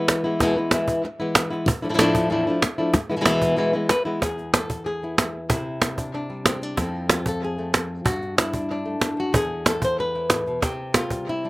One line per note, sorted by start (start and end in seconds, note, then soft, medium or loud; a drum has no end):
0.00 0.24 E3 soft
0.00 0.24 G#3 soft
0.00 0.24 B3 medium
0.00 0.23 E4 medium
0.08 cajon slap medium
0.24 0.40 E3 soft
0.24 0.40 G#3 medium
0.24 0.40 B3 soft
0.24 0.39 E4 medium
0.40 0.55 E2 medium
0.40 0.56 B2 medium
0.40 0.56 E3 medium
0.40 0.56 G#3 medium
0.40 0.57 B3 medium
0.40 0.55 E4 medium
0.40 cajon bass medium
0.40 cajon slap soft
0.56 0.71 E3 soft
0.56 0.71 G#3 soft
0.56 0.72 B3 soft
0.56 0.71 E4 medium
0.71 1.03 E3 medium
0.71 1.03 G#3 medium
0.71 1.04 B3 medium
0.71 1.04 E4 medium
0.71 cajon slap medium
0.88 cajon bass medium
1.05 muted nylon-string guitar stroke medium
1.20 1.52 E3 soft
1.20 1.51 G#3 soft
1.20 1.50 B3 medium
1.20 1.49 E4 medium
1.35 cajon slap loud
1.50 1.67 E3 soft
1.50 1.67 G#3 soft
1.50 1.66 B3 soft
1.50 1.66 E4 medium
1.50 cajon slap soft
1.66 muted nylon-string guitar stroke medium
1.66 cajon bass medium
1.82 1.88 F3 soft
1.82 1.89 A3 medium
1.82 1.89 D4 medium
1.82 1.89 E4 medium
1.82 cajon slap soft
1.89 1.93 A2 medium
1.89 1.93 F3 medium
1.89 1.93 A3 medium
1.89 1.94 D4 medium
1.89 1.94 E4 medium
1.94 1.97 A2 medium
1.94 1.97 F3 medium
1.94 1.98 A3 medium
1.94 1.98 D4 medium
1.94 1.98 E4 medium
1.98 2.29 A2 loud
1.98 2.30 F3 medium
1.98 2.30 A3 medium
1.98 2.30 D4 loud
1.98 2.30 E4 loud
1.98 cajon slap loud
2.15 cajon bass medium
2.30 2.46 E2 medium
2.30 2.46 A2 medium
2.30 2.46 F3 medium
2.30 2.46 A3 medium
2.30 2.47 D4 medium
2.30 2.46 E4 medium
2.47 2.62 F3 soft
2.47 2.62 A3 medium
2.47 2.63 D4 medium
2.47 2.62 E4 medium
2.62 muted nylon-string guitar stroke medium
2.62 cajon slap medium
2.78 2.95 F3 soft
2.78 2.94 A3 soft
2.78 2.94 D4 soft
2.78 2.94 E4 medium
2.94 muted nylon-string guitar stroke medium
2.94 cajon bass medium
2.94 cajon slap soft
3.10 3.15 E3 soft
3.10 3.16 G#3 soft
3.10 3.16 B3 medium
3.10 3.16 E4 medium
3.10 cajon slap soft
3.17 3.20 B2 soft
3.17 3.20 E3 medium
3.17 3.20 G#3 medium
3.17 3.20 B3 medium
3.17 3.21 E4 medium
3.21 3.24 B2 medium
3.21 3.25 E3 medium
3.21 3.25 G#3 medium
3.21 3.25 B3 medium
3.21 3.25 E4 medium
3.25 3.55 E2 medium
3.25 3.55 B2 medium
3.25 3.56 E3 loud
3.25 3.57 G#3 medium
3.25 3.57 B3 medium
3.25 3.57 E4 medium
3.25 cajon slap medium
3.42 cajon bass medium
3.56 3.72 E2 medium
3.56 3.73 B2 medium
3.56 3.73 E3 medium
3.56 3.73 G#3 medium
3.56 3.73 B3 medium
3.56 3.72 E4 medium
3.73 3.89 E3 soft
3.73 3.89 G#3 medium
3.73 3.89 B3 medium
3.73 3.89 E4 medium
3.89 4.05 B4 medium
3.89 muted nylon-string guitar stroke medium
3.89 cajon slap medium
4.05 4.22 E3 soft
4.05 4.22 G#3 soft
4.05 4.21 B3 medium
4.05 4.21 E4 medium
4.22 5.49 E2 medium
4.22 4.54 G#4 medium
4.22 cajon bass medium
4.22 cajon slap soft
4.38 cajon slap soft
4.54 4.86 A4 medium
4.54 cajon slap medium
4.70 cajon bass medium
4.86 5.49 G#4 medium
5.03 5.48 B3 soft
5.03 5.17 E4 soft
5.18 5.48 E4 soft
5.18 cajon slap medium
5.49 6.76 C3 medium
5.49 6.45 E4 medium
5.49 cajon bass medium
5.82 cajon slap medium
5.98 6.13 D4 soft
5.98 cajon bass medium
6.14 6.46 D4 medium
6.30 6.78 G3 soft
6.46 6.63 C4 medium
6.46 cajon slap medium
6.62 6.78 D4 medium
6.62 cajon slap soft
6.77 8.04 F2 medium
6.77 8.04 F3 soft
6.77 7.57 A3 soft
6.77 7.58 C4 soft
6.77 7.10 E4 medium
6.77 cajon bass medium
6.77 cajon slap soft
7.09 7.26 F4 medium
7.09 cajon slap medium
7.26 7.43 A4 medium
7.26 cajon bass medium
7.44 8.05 G#4 medium
7.58 8.04 A3 soft
7.58 7.72 C4 soft
7.74 8.04 C4 soft
7.74 cajon slap medium
8.05 8.99 G2 medium
8.05 8.38 F#4 medium
8.05 cajon bass medium
8.22 cajon slap soft
8.38 9.02 E4 medium
8.38 cajon slap loud
8.53 8.70 D4 soft
8.53 cajon bass medium
8.71 9.35 D4 medium
8.85 9.32 A3 soft
9.00 9.17 G2 soft
9.00 cajon slap medium
9.17 9.32 F#2 medium
9.17 9.35 F#4 medium
9.33 10.62 E2 medium
9.33 9.67 G#4 medium
9.33 cajon bass medium
9.66 9.83 A4 medium
9.66 cajon slap medium
9.82 9.99 C5 medium
9.82 cajon bass medium
10.00 10.63 B4 medium
10.15 10.61 E4 soft
10.30 10.46 A2 medium
10.30 cajon slap medium
10.46 10.62 B2 soft
10.46 cajon slap soft
10.62 11.50 C3 medium
10.62 11.27 G4 medium
10.62 cajon bass loud
10.62 cajon slap soft
10.94 11.27 F4 medium
10.94 cajon slap medium
11.10 11.43 G3 soft
11.10 cajon bass medium
11.29 11.50 E4 medium
11.45 11.50 G3 soft
11.45 11.50 D4 soft